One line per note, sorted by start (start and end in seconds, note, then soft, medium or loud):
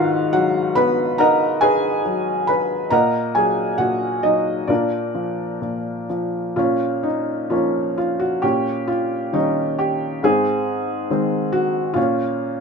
0.00 2.88 G#2 medium
0.00 1.58 D#3 soft
0.00 0.30 F4 medium
0.00 0.33 F#4 medium
0.00 0.77 B4 medium
0.00 1.20 D#5 medium
0.00 0.34 F5 medium
0.00 0.33 F#5 loud
0.33 2.01 F#3 medium
0.33 0.73 F#4 medium
0.33 0.77 F#5 medium
0.75 2.44 B3 soft
0.75 1.17 B4 medium
0.75 1.20 B5 loud
1.18 2.88 D#4 soft
1.18 1.59 A#4 medium
1.18 1.60 D#5 medium
1.18 1.59 F#5 medium
1.18 1.63 A#5 medium
1.61 2.45 G#4 medium
1.61 2.45 B4 medium
1.61 2.50 G#5 medium
2.05 2.90 F#3 soft
2.47 2.90 B4 medium
2.47 2.89 B5 medium
2.90 3.77 A#2 medium
2.90 3.33 A#4 medium
2.90 3.33 D#5 medium
2.90 3.33 F#5 medium
2.90 3.37 A#5 medium
3.35 4.21 F#3 soft
3.35 3.77 G#4 medium
3.35 3.80 G#5 medium
3.78 4.65 A#2 soft
3.78 4.21 F#4 medium
3.78 4.24 F#5 medium
4.23 4.67 F#3 soft
4.23 4.66 D#4 medium
4.23 4.70 D#5 medium
4.67 5.60 A#2 medium
4.67 6.06 D4 soft
4.67 6.06 F4 soft
4.67 6.06 A#4 soft
4.67 6.05 D5 medium
5.15 6.08 F3 soft
5.61 6.54 A#2 soft
6.10 6.56 F3 soft
6.56 8.39 A#2 soft
6.56 7.50 C#4 soft
6.56 7.05 F4 medium
7.03 7.52 D#4 medium
7.50 8.40 F3 soft
7.50 8.40 A#3 soft
7.50 8.41 C#4 soft
7.50 7.96 F4 medium
7.98 8.21 F4 medium
8.19 8.43 F#4 medium
8.42 10.20 A#2 soft
8.42 9.32 C#4 soft
8.42 8.89 G4 medium
8.87 9.35 F4 medium
9.33 10.20 D#3 soft
9.33 10.21 G3 soft
9.33 10.21 C#4 soft
9.33 9.76 D#4 medium
9.79 10.20 G4 medium
10.23 11.92 G#2 medium
10.23 11.10 C4 medium
10.23 11.07 G#4 medium
11.10 11.94 D#3 soft
11.10 11.94 G#3 soft
11.10 11.94 C4 soft
11.52 11.97 F#4 medium
11.94 12.60 A#2 soft
11.94 12.60 C#4 medium
11.94 12.60 F4 medium